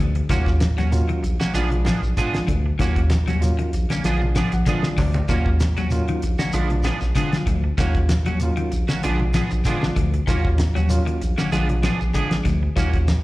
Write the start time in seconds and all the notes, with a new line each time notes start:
Already playing: D3
0.00 D2
0.15 muted clean electric guitar stroke, closed hi-hat
0.29 D#2 D#3 F#3 A#3 C#4 F4 F#4, kick, closed hi-hat, low conga, shekere
0.46 kick, snare
0.60 muted clean electric guitar stroke, snare, closed hi-hat, high conga, shekere
0.78 D#2 F#3 C#4 F#4, snare, closed hi-hat, shekere
0.92 F#3 A#3 C#4 F4, muted clean electric guitar stroke, closed hi-hat, shekere
1.08 D#3, muted clean electric guitar stroke, closed hi-hat
1.23 A#1, muted clean electric guitar stroke, closed hi-hat, shekere
1.40 A#3 C#4 F#4, snare, high conga, low conga, shekere
1.54 A#1 F3 G#3 B3 D4 F4 G#4, closed hi-hat, high conga, shekere
1.70 muted clean electric guitar stroke, closed hi-hat, low conga
1.85 F3 B3 D4 G#4, snare, closed hi-hat, high conga, shekere
2.02 A#1, muted clean electric guitar stroke, shekere
2.17 F3 G#3 B3 D4 F4 G#4, kick, closed hi-hat, shekere
2.34 A#1, snare, closed hi-hat, high conga
2.47 D2 D3, muted clean electric guitar stroke, kick, closed hi-hat, high conga, shekere
2.66 muted clean electric guitar stroke
2.79 D#2 D#3 F#3 A#3 C#4 F4 F#4, kick, closed hi-hat, low conga, shekere
2.96 kick, closed hi-hat
3.10 muted clean electric guitar stroke, snare, closed hi-hat, high conga, shekere
3.28 D#2 F#3 C#4 F#4, closed hi-hat, high conga, shekere
3.41 F#3 A#3 C#4 F4, muted clean electric guitar stroke, closed hi-hat, shekere
3.59 D#3, closed hi-hat
3.73 A#1, muted clean electric guitar stroke, closed hi-hat, shekere
3.90 D3 A#3 C#4, snare, closed hi-hat, high conga, low conga, shekere
4.04 A#1 F3 G#3 B3 D4 F4 G#4, closed hi-hat, high conga, shekere
4.22 muted clean electric guitar stroke, low conga
4.35 F3 B3 D4 G#4 G#5, snare, closed hi-hat, high conga, shekere
4.52 A#1 F#5, muted clean electric guitar stroke, closed hi-hat, high conga, shekere
4.66 D3 F3 G#3 B3 D4 F4 G#4 D5, kick, closed hi-hat, high conga, shekere
4.83 A#1, snare, high conga
4.98 D2 D3 D5, muted clean electric guitar stroke, kick, snare, open hi-hat, low conga, shekere
5.14 muted clean electric guitar stroke, closed hi-hat, low conga
5.28 D#2 D#3 F#3 A#3 C#4 F4 F#4, kick, snare, closed hi-hat, low conga, shekere
5.46 kick
5.60 muted clean electric guitar stroke, snare, closed hi-hat, high conga, shekere
5.77 D#2 F#3 C#4 F#4, closed hi-hat, high conga, shekere
5.90 F#3 A#3 C#4 F4, muted clean electric guitar stroke, closed hi-hat, shekere
6.08 D#3, muted clean electric guitar stroke, closed hi-hat
6.22 A#1, muted clean electric guitar stroke, closed hi-hat, shekere
6.39 D3 A#3 C#4 F#4, snare, high conga, low conga, shekere
6.53 A#1 F3 G#3 B3 D4 F4, muted clean electric guitar stroke, closed hi-hat, shekere
6.70 muted clean electric guitar stroke, closed hi-hat, low conga
6.83 F3 B3 D4 G#4, snare, closed hi-hat, high conga, shekere
7.01 A#1, muted clean electric guitar stroke, snare, shekere
7.15 D3 F3 G#3 B3 D4 F4 G#4, kick, closed hi-hat, shekere
7.33 A#1, snare, closed hi-hat, high conga
7.47 D2 D3, muted clean electric guitar stroke, kick, closed hi-hat, high conga, shekere
7.64 muted clean electric guitar stroke
7.78 D#2 D#3 F#3 A#3 C#4 F4 F#4, kick, closed hi-hat, low conga, shekere
7.95 kick, closed hi-hat
8.09 muted clean electric guitar stroke, snare, closed hi-hat, high conga, shekere
8.26 D#2 F#3 C#4 F#4, closed hi-hat, high conga, shekere
8.40 F#3 A#3 C#4 F4, muted clean electric guitar stroke, closed hi-hat, shekere
8.57 D#3, muted clean electric guitar stroke, closed hi-hat
8.71 A#1, muted clean electric guitar stroke, closed hi-hat, shekere
8.88 D3 A#3 C#4 F#4, snare, closed hi-hat, high conga, low conga, shekere
9.03 A#1 F3 G#3 B3 D4 F4 G#4, closed hi-hat, high conga, shekere
9.20 muted clean electric guitar stroke, low conga
9.34 F3 B3 D4 G#4, snare, closed hi-hat, high conga, shekere
9.51 A#1, muted clean electric guitar stroke, closed hi-hat, shekere
9.65 D3 F3 G#3 B3 D4 F4 G#4, kick, snare, closed hi-hat, shekere
9.82 A#1, snare, high conga
9.96 D2 D3, muted clean electric guitar stroke, kick, closed hi-hat, high conga, shekere
10.14 muted clean electric guitar stroke, closed hi-hat
10.27 D#2 D#3 F#3 A#3 C#4 F4 F#4, kick, closed hi-hat, low conga, shekere
10.45 kick
10.58 muted clean electric guitar stroke, snare, closed hi-hat, high conga, shekere
10.75 D#2 F#3 C#4 F#4, closed hi-hat, high conga, shekere
10.89 F#3 A#3 C#4 F4, muted clean electric guitar stroke, closed hi-hat, shekere
11.06 D#3, muted clean electric guitar stroke, closed hi-hat
11.21 A#1, muted clean electric guitar stroke, closed hi-hat, shekere
11.38 D3 A#3 C#4 F#4, snare, high conga, low conga, shekere
11.52 A#1 F3 G#3 B3 D4 F4 G#4, closed hi-hat, high conga, shekere
11.69 muted clean electric guitar stroke, closed hi-hat, low conga
11.83 F3 B3 D4 G#4, snare, closed hi-hat, high conga, shekere
12.01 A#1, muted clean electric guitar stroke, shekere
12.14 D3 F3 G#3 B3 D4 G#4, kick, closed hi-hat, shekere
12.31 A#1, snare, closed hi-hat, high conga
12.45 D2 D3, muted clean electric guitar stroke, kick, closed hi-hat, high conga, shekere
12.63 muted clean electric guitar stroke
12.76 D#2 D#3 F#3 A#3 C#4 F4 F#4, kick, closed hi-hat, low conga, shekere
12.93 kick, closed hi-hat
13.08 muted clean electric guitar stroke, snare, closed hi-hat, high conga, shekere